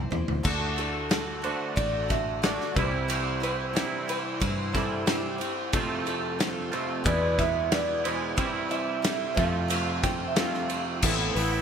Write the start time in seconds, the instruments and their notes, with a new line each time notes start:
Already playing: steel-string acoustic guitar G3 C4 E4
0.11 fingered electric bass E2, steel-string acoustic guitar G3 C4 E4 C5, floor tom
0.28 fingered electric bass D2, floor tom
0.43 fingered electric bass D2, steel-string acoustic guitar D3 A3 D4 F#4 A4, clean electric guitar A4, kick, crash
0.76 steel-string acoustic guitar D4 F#4 A4, clean electric guitar A4, ride
1.09 steel-string acoustic guitar A3 D4 F#4 A4, snare, ride
1.42 steel-string acoustic guitar D4 F#4 A4, clean electric guitar C5, ride
1.46 clean electric guitar D3 A3
1.76 fingered electric bass A1, steel-string acoustic guitar D3 A3 D4 F#4 A4, clean electric guitar D5, kick, ride
2.08 steel-string acoustic guitar D4 F#4 A4, clean electric guitar E5, kick, snare, ride
2.42 clean electric guitar D3 D5, steel-string acoustic guitar A3 D4 F#4 A4, snare, ride
2.60 snare
2.74 fingered electric bass C2, clean electric guitar C3 E3 C5, steel-string acoustic guitar G3 C4 E4 C5, kick, ride
3.08 steel-string acoustic guitar C3 E3 G3 C4 E4 C5, ride
3.40 steel-string acoustic guitar G3 C4 E4 C5, clean electric guitar C5, ride
3.73 clean electric guitar C3 E3, steel-string acoustic guitar G3 C4 E4 C5, snare, ride
4.08 steel-string acoustic guitar G3 C4 E4 C5, clean electric guitar C5, ride
4.40 fingered electric bass G2, steel-string acoustic guitar C3 E3 G3 C4 E4 C5, kick, ride
4.73 clean electric guitar E3 A4, steel-string acoustic guitar G3 C4 E4 C5, kick, snare, ride
4.77 clean electric guitar C3
5.06 steel-string acoustic guitar G3 C4 E4 C5, clean electric guitar G4, snare, ride
5.38 steel-string acoustic guitar G3 C4 E4 C5, ride
5.72 clean electric guitar F2 C3 A4, steel-string acoustic guitar F3 A3 C4 F4 A4, reed electric piano F4 A4 C5, kick, ride
6.06 steel-string acoustic guitar C4 F4 A4, clean electric guitar A4, ride
6.38 steel-string acoustic guitar A3 C4 F4 A4, reed electric piano F4 A4 C5, snare, ride
6.72 clean electric guitar F2 C3 F3 A3 C5, steel-string acoustic guitar C4 F4 A4, ride
7.04 clean electric guitar E2 B2 G#3 D5, fingered electric bass E2, steel-string acoustic guitar E3 B3 E4 G#4 B4, reed electric piano E4 G#4 B4, kick, ride
7.38 steel-string acoustic guitar E4 G#4 B4, clean electric guitar E5, kick, snare, ride
7.70 steel-string acoustic guitar B3 E4 G#4 B4, reed electric piano E4 G#4 B4, clean electric guitar D5, snare, ride
8.05 clean electric guitar E2 B2 E3 G#3 B3 C5, steel-string acoustic guitar E4 G#4, ride
8.36 fingered electric bass C2, steel-string acoustic guitar C3 E3 G3 C4 E4 C5, reed electric piano E4 G4 C5, kick, ride
8.69 steel-string acoustic guitar G3 C4 E4 C5, clean electric guitar E5, ride
9.02 steel-string acoustic guitar G3 C4 E4 C5, reed electric piano E4 G4 A4, snare, ride
9.35 clean electric guitar F2 C3 F3 A3 F5, fingered electric bass F2, steel-string acoustic guitar C4 F4 C5, reed electric piano F4 A4 C5, kick, ride
9.68 steel-string acoustic guitar F3 A3 C4 F4 C5, ride
10.03 steel-string acoustic guitar C4 F4 C5, clean electric guitar G5, kick, snare, ride
10.28 clean electric guitar E5
10.36 clean electric guitar F2 C3 F3 F5, steel-string acoustic guitar A3 C4 F4 C5, reed electric piano F4 A4 C5, snare, ride
10.54 snare
10.69 steel-string acoustic guitar C4 F4 C5, ride
11.02 fingered electric bass A1, steel-string acoustic guitar A2 E3 A3 E4 B4, clean electric guitar B3 C4 A4, reed electric piano A4 B4, kick, crash
11.35 fingered electric bass A1, clean electric guitar E3 B3 C4 B4, steel-string acoustic guitar A3 E4 B4, open hi-hat
11.52 clean electric guitar B3 C4 E4